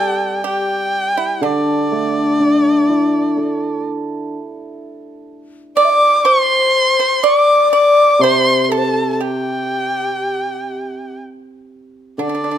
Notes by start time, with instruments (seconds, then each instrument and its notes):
Already playing: hammered dulcimer G3, xiao G4, pipa A4, erhu G5
0.44 pipa G4, xiao G4, erhu G5
1.17 pipa E4
1.35 xiao E4
1.41 hammered dulcimer D3, pipa D4, xiao D4, erhu D5
1.92 hammered dulcimer A3
2.40 hammered dulcimer D4
2.89 hammered dulcimer E4
3.37 hammered dulcimer A4
5.76 xiao D5, pipa D5, erhu D6
5.85 xiao E5
5.90 xiao D5
6.20 xiao D5
6.25 xiao C5, pipa C5, erhu C6
7.00 pipa C5
7.23 pipa D5, xiao D5, erhu D6
7.73 pipa D5, erhu D6
8.19 hammered dulcimer C3, xiao C5, erhu C6
8.23 pipa C5
8.64 erhu C6
8.69 xiao A4, pipa A4, erhu A5
8.78 xiao C5
8.85 xiao A4
9.13 erhu A5
9.20 pipa G4, xiao G4, erhu G5
12.18 hammered dulcimer D3, pipa D4, erhu D5
12.29 pipa D4
12.35 pipa D4
12.44 pipa D4
12.51 pipa D4